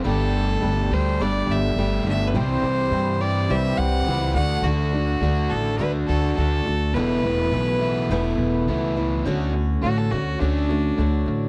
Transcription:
X:1
M:4/4
L:1/16
Q:1/4=104
K:Ador
V:1 name="Fiddle"
A6 c2 d2 e4 e3/2 B/2 | c6 d2 e2 f4 f2 | F6 A2 B2 A2 A4 | B12 z4 |
[K:D] z4 F A F2 D8 |]
V:2 name="Harmonium"
[DGA]16 | [EGc]12- [EGc]2 [DFA]2- | [DFA]16 | [B,EA]16 |
[K:D] [Fc]16 |]
V:3 name="Steel-string acoustic guitar"
[G,A,DG]4 [G,A,DG]4 [G,A,DG]4 [G,A,DG]2 [A,DG]2 | [C,E,G,CG]2 [G,CG]2 [E,G,CG]4 [C,E,G,CG]4 [E,G,CG]2 [A,DF]2 | [D,A,DF]2 [A,DF]2 [D,A,DF]4 [D,A,DF]4 [D,A,DF]2 [A,DF]2 | [E,,B,,E,A,B,E]2 [E,A,B,E]2 [E,A,B,E]4 [E,,B,,E,A,B,E]4 [E,A,B,E]2 [E,A,B,E]2 |
[K:D] [D,A,CF]4 [D,A,CF]2 [A,CF]2 [D,A,CF]2 [A,CF]2 [D,A,F]4 |]
V:4 name="Overdriven electric guitar"
[G,A,DG]6 [G,A,DG]6 [G,A,DG]4 | [C,E,G,CG]6 [C,E,G,CG]6 [C,E,G,CG]2 [D,A,DF]2- | [D,A,DF]4 [D,A,DF]6 [D,A,DF]4 z2 | [E,,B,,E,A,B,E]6 [E,,B,,E,A,B,E]6 [E,,B,,E,A,B,E]4 |
[K:D] [D,A,D]2 [D,A,]2 [D,A,]2 [D,A,]2 [D,A,D]2 [D,A,]2 [D,A,]2 [D,A,]2 |]
V:5 name="Upright bass" clef=bass
G,,,4 G,,,2 D,,2 G,,,2 G,,,2 G,,,2 G,,,2 | C,,2 C,,2 G,,4 C,,2 C,,2 ^C,,2 D,,2 | D,,4 D,,2 A,,,2 D,,2 D,,2 D,,2 D,,2 | E,,,2 E,,,2 B,,,4 E,,,2 E,,,2 ^C,,4 |
[K:D] D,,4 A,,,2 D,,2 D,,4 D,,2 A,,,2 |]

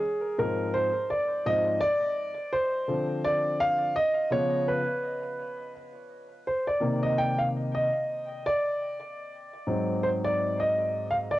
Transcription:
X:1
M:4/4
L:1/16
Q:"Swing 16ths" 1/4=84
K:Ablyd
V:1 name="Grand piano"
A2 B2 c2 d2 e2 d4 c2- | c2 d2 f2 e2 _d2 _c6 | z4 c d2 e g f2 e4 d- | d8 c d2 e3 f d |]
V:2 name="Grand piano" clef=bass
z2 [A,,F,C]2 z4 [A,,F,C]2 z6 | [D,F,C]6 z2 [_D,F,_C]2 z6 | z6 [C,E,B,]6 z4 | z6 [A,,_G,C]8- [A,,G,C]2 |]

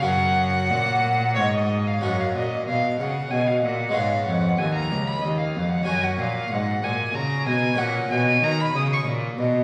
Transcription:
X:1
M:3/4
L:1/16
Q:1/4=94
K:F#
V:1 name="Violin"
f8 c d2 e | f e d2 e2 f2 g e f2 | e2 f2 g a2 b d e2 f | g f e2 f2 g2 a2 g2 |
f2 g2 a b d' c' z4 |]
V:2 name="Harpsichord"
[CFA]12 | [CFA]12 | [G,CB]12 | [CFA]12 |
[CFA]12 |]
V:3 name="Harpsichord" clef=bass
F,,4 A,,4 G,,4 | F,,2 A,,2 B,,2 C,2 B,,2 A,,2 | G,,2 E,,2 D,,2 C,,2 D,,2 E,,2 | F,,2 A,,2 G,,2 A,,2 C,2 B,,2 |
A,,2 B,,2 D,2 C,2 A,,2 B,,2 |]
V:4 name="Cello" clef=bass
F,,4 A,,4 G,,4 | F,,2 A,,2 B,,2 C,2 B,,2 A,,2 | G,,2 E,,2 D,,2 C,,2 D,,2 E,,2 | F,,2 A,,2 G,,2 A,,2 C,2 B,,2 |
A,,2 B,,2 D,2 C,2 A,,2 B,,2 |]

